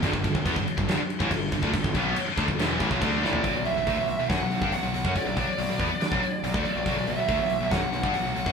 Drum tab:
CC |x-x-x-x-x-x-x-x-|x-x-x-x-x-x-x---|----------------|----------------|
HH |----------------|----------------|o-o-o-o-o-o-o-o-|o-o-o-o-o-o-o-o-|
SD |--------o-------|--------o-----o-|--------o-------|--------o-------|
FT |----------------|---------------o|----------------|----------------|
BD |oooooo-o---oo-oo|ooo---oo--ooo---|o---o---o--o---o|o-o---o--o---o--|

CC |----------------|
HH |o-o-o-o-o-o-o-o-|
SD |--------o-------|
FT |----------------|
BD |o---o---o--o---o|